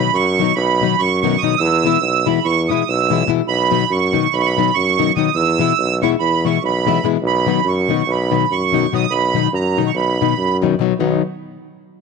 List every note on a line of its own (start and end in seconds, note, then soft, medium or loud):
0.00 0.17 B5 loud
0.14 0.40 F#2 loud
0.14 0.55 C#6 loud
0.38 0.51 B2 medium
0.38 0.52 D#3 medium
0.38 0.52 F#3 medium
0.38 0.51 B3 medium
0.38 0.52 D#4 medium
0.56 0.83 B1 loud
0.56 1.01 B5 loud
0.81 0.93 B2 medium
0.81 0.94 D#3 medium
0.81 0.94 F#3 medium
0.81 0.94 B3 medium
0.81 0.95 D#4 medium
0.99 1.36 F#2 medium
0.99 1.20 C#6 loud
1.21 1.35 B2 medium
1.21 1.35 D#3 medium
1.21 1.35 F#3 medium
1.21 1.35 B3 medium
1.21 1.36 D#4 medium
1.21 1.41 C#6 loud
1.38 1.59 D#6 loud
1.42 1.54 B2 medium
1.42 1.54 D#3 medium
1.42 1.54 F#3 medium
1.42 1.54 B3 medium
1.42 1.55 D#4 medium
1.58 1.86 E2 loud
1.58 2.27 E6 loud
1.84 1.96 B2 medium
1.84 1.97 E3 medium
1.84 1.97 G#3 medium
1.84 1.97 B3 medium
1.84 1.97 E4 medium
2.02 2.28 B1 medium
2.26 2.39 B2 medium
2.26 2.39 E3 medium
2.26 2.39 G#3 medium
2.26 2.39 B3 medium
2.26 2.39 E4 medium
2.26 2.46 B5 loud
2.45 2.71 E2 medium
2.45 2.69 C#6 loud
2.68 2.81 B2 medium
2.68 2.82 E3 medium
2.68 2.82 G#3 medium
2.68 2.82 B3 medium
2.68 2.83 E4 medium
2.68 2.89 D#6 medium
2.88 3.24 B1 medium
2.88 3.30 E6 loud
3.10 3.22 B2 medium
3.10 3.22 E3 medium
3.10 3.22 G#3 medium
3.10 3.23 B3 medium
3.10 3.23 E4 medium
3.27 3.40 B2 medium
3.27 3.40 E3 medium
3.27 3.40 G#3 medium
3.27 3.41 B3 medium
3.27 3.41 E4 medium
3.48 3.74 B1 loud
3.48 3.92 B5 loud
3.71 3.83 B2 medium
3.71 3.83 D#3 medium
3.71 3.83 F#3 medium
3.71 3.84 B3 medium
3.71 3.84 D#4 medium
3.90 4.16 F#2 medium
3.90 4.35 C#6 loud
4.12 4.26 B2 medium
4.12 4.26 D#3 medium
4.12 4.26 F#3 medium
4.12 4.26 B3 medium
4.12 4.26 D#4 medium
4.33 4.59 B1 loud
4.33 4.41 B5 loud
4.40 4.48 C#6 medium
4.45 4.75 B5 loud
4.57 4.69 B2 medium
4.57 4.70 D#3 medium
4.57 4.70 F#3 medium
4.57 4.70 B3 medium
4.57 4.70 D#4 medium
4.74 5.12 F#2 medium
4.74 5.13 C#6 loud
4.98 5.10 B2 medium
4.98 5.10 D#3 medium
4.98 5.10 F#3 medium
4.98 5.11 B3 medium
4.98 5.11 D#4 medium
5.16 5.28 B2 medium
5.16 5.29 D#3 medium
5.16 5.29 F#3 medium
5.16 5.29 B3 medium
5.16 5.30 D#4 medium
5.16 5.36 D#6 medium
5.35 5.61 E2 loud
5.35 5.98 E6 loud
5.59 5.71 B2 medium
5.59 5.72 E3 medium
5.59 5.72 G#3 medium
5.59 5.72 B3 medium
5.59 5.72 E4 medium
5.79 6.04 B1 medium
6.02 6.14 B2 medium
6.02 6.15 E3 medium
6.02 6.15 G#3 medium
6.02 6.15 B3 medium
6.02 6.15 E4 medium
6.02 6.11 C#6 medium
6.20 6.46 E2 medium
6.20 6.45 B5 loud
6.45 6.57 B2 medium
6.45 6.57 E3 medium
6.45 6.57 G#3 medium
6.45 6.58 B3 medium
6.45 6.58 E4 medium
6.45 6.63 C#6 medium
6.63 6.99 B1 loud
6.63 7.07 B5 loud
6.86 6.98 B2 medium
6.86 6.98 E3 medium
6.86 6.98 G#3 medium
6.86 6.98 B3 medium
6.86 6.99 E4 medium
7.04 7.16 B2 medium
7.04 7.17 E3 medium
7.04 7.17 G#3 medium
7.04 7.17 B3 medium
7.04 7.17 E4 medium
7.23 7.49 B1 loud
7.27 7.69 B5 loud
7.46 7.59 B2 medium
7.46 7.59 D#3 medium
7.46 7.59 F#3 medium
7.46 7.59 B3 medium
7.46 7.60 D#4 medium
7.65 7.91 F#2 loud
7.65 8.11 C#6 medium
7.88 8.01 B2 medium
7.88 8.02 D#3 medium
7.88 8.02 F#3 medium
7.88 8.02 B3 medium
7.88 8.02 D#4 medium
8.07 8.33 B1 loud
8.11 8.54 B5 medium
8.31 8.44 B2 medium
8.31 8.44 D#3 medium
8.31 8.44 F#3 medium
8.31 8.44 B3 medium
8.31 8.45 D#4 medium
8.51 8.87 F#2 medium
8.51 8.94 C#6 loud
8.72 8.85 B2 medium
8.72 8.85 D#3 medium
8.72 8.85 F#3 medium
8.72 8.86 B3 medium
8.72 8.86 D#4 medium
8.93 9.05 B2 medium
8.93 9.05 D#3 medium
8.93 9.05 F#3 medium
8.93 9.05 B3 medium
8.93 9.05 D#4 medium
8.93 9.13 D#6 loud
9.10 9.36 B1 loud
9.10 9.51 B5 loud
9.34 9.47 B2 medium
9.34 9.47 D#3 medium
9.34 9.47 F#3 medium
9.34 9.47 B3 medium
9.34 9.48 D#4 medium
9.53 9.79 F#2 loud
9.53 9.92 A#5 medium
9.77 9.90 B2 medium
9.77 9.90 D#3 medium
9.77 9.90 F#3 medium
9.77 9.90 B3 medium
9.77 9.90 D#4 medium
9.87 9.95 C#6 medium
9.95 10.21 B1 loud
9.95 10.57 B5 medium
10.21 10.33 B2 medium
10.21 10.33 D#3 medium
10.21 10.33 F#3 medium
10.21 10.34 B3 medium
10.21 10.34 D#4 medium
10.38 10.74 F#2 medium
10.62 10.74 B2 medium
10.62 10.74 D#3 medium
10.62 10.74 F#3 medium
10.62 10.74 B3 medium
10.62 10.74 D#4 medium
10.79 10.92 B2 medium
10.79 10.92 D#3 medium
10.79 10.93 F#3 medium
10.79 10.93 B3 medium
10.79 10.93 D#4 medium
10.99 11.21 B1 loud
10.99 11.21 D#3 medium
10.99 11.22 F#3 medium
10.99 11.21 B3 medium
10.99 11.21 D#4 loud